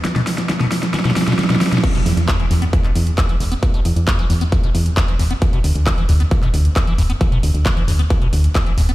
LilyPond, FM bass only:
\new Staff \with { instrumentName = "FM bass" } { \clef bass \time 4/4 \key d \mixolydian \tempo 4 = 134 r1 | r8 e,16 e,16 r8 e,16 r8. e,16 r8. e,,16 r16 | r8 e,16 e,16 r8 e,16 r8. e,16 r8. e,,16 r16 | r8 d,16 d,16 r8 d,16 r8. d,16 r8. d,,16 r16 |
r8 d,16 d,16 r8 d,16 r8. d,16 r8. d,,16 r16 | }